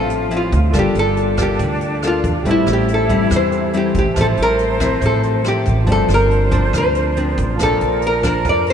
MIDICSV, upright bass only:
0, 0, Header, 1, 2, 480
1, 0, Start_track
1, 0, Tempo, 428266
1, 828, Time_signature, 4, 2, 24, 8
1, 9787, End_track
2, 0, Start_track
2, 0, Title_t, "Upright bass"
2, 0, Program_c, 0, 32
2, 0, Note_on_c, 0, 33, 73
2, 543, Note_off_c, 0, 33, 0
2, 588, Note_on_c, 0, 38, 104
2, 823, Note_on_c, 0, 31, 85
2, 840, Note_off_c, 0, 38, 0
2, 1049, Note_off_c, 0, 31, 0
2, 1066, Note_on_c, 0, 31, 89
2, 1741, Note_off_c, 0, 31, 0
2, 1789, Note_on_c, 0, 38, 77
2, 2463, Note_off_c, 0, 38, 0
2, 2510, Note_on_c, 0, 40, 88
2, 2751, Note_off_c, 0, 40, 0
2, 2751, Note_on_c, 0, 33, 84
2, 2972, Note_off_c, 0, 33, 0
2, 2985, Note_on_c, 0, 33, 93
2, 3660, Note_off_c, 0, 33, 0
2, 3705, Note_on_c, 0, 40, 78
2, 4380, Note_off_c, 0, 40, 0
2, 4423, Note_on_c, 0, 33, 99
2, 4536, Note_off_c, 0, 33, 0
2, 4662, Note_on_c, 0, 33, 88
2, 4887, Note_off_c, 0, 33, 0
2, 4901, Note_on_c, 0, 33, 85
2, 5579, Note_off_c, 0, 33, 0
2, 5619, Note_on_c, 0, 33, 84
2, 6298, Note_off_c, 0, 33, 0
2, 6338, Note_on_c, 0, 33, 92
2, 6582, Note_off_c, 0, 33, 0
2, 6582, Note_on_c, 0, 31, 87
2, 6808, Note_off_c, 0, 31, 0
2, 6821, Note_on_c, 0, 31, 96
2, 7501, Note_off_c, 0, 31, 0
2, 7544, Note_on_c, 0, 38, 82
2, 8223, Note_off_c, 0, 38, 0
2, 8267, Note_on_c, 0, 33, 100
2, 8508, Note_off_c, 0, 33, 0
2, 8508, Note_on_c, 0, 34, 92
2, 8733, Note_off_c, 0, 34, 0
2, 8755, Note_on_c, 0, 34, 93
2, 9430, Note_off_c, 0, 34, 0
2, 9470, Note_on_c, 0, 41, 73
2, 9787, Note_off_c, 0, 41, 0
2, 9787, End_track
0, 0, End_of_file